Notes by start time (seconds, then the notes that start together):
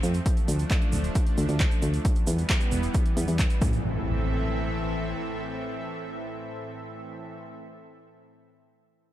Already playing: F3 A3 C4
0.03 F2, closed hi-hat, shaker
0.14 closed hi-hat, shaker
0.26 F3 A3 D4, kick, closed hi-hat, shaker
0.37 closed hi-hat, shaker
0.48 D2, closed hi-hat, shaker
0.59 closed hi-hat, shaker
0.71 kick, clap, closed hi-hat, shaker
0.82 closed hi-hat
0.92 D1, shaker
1.04 closed hi-hat, shaker
1.15 kick, closed hi-hat, shaker
1.27 closed hi-hat
1.38 D2, closed hi-hat, shaker
1.49 D2, closed hi-hat, shaker
1.60 kick, clap, closed hi-hat, shaker
1.71 closed hi-hat, shaker
1.82 D2, closed hi-hat, shaker
1.94 closed hi-hat, shaker
2.05 E3 G3 B3, kick, closed hi-hat, shaker
2.16 closed hi-hat, shaker
2.27 E2, closed hi-hat, shaker
2.38 closed hi-hat, shaker
2.50 kick, clap, closed hi-hat, shaker
2.60 closed hi-hat, shaker
2.72 E1, closed hi-hat, shaker
2.83 closed hi-hat, shaker
2.94 kick, closed hi-hat, shaker
3.06 closed hi-hat
3.17 E2, closed hi-hat, shaker
3.28 E2, closed hi-hat, shaker
3.39 kick, clap, closed hi-hat, shaker
3.50 closed hi-hat, shaker
3.61 A1 A2 E3 C4 A4 E5, kick, impact, shaker
3.73 shaker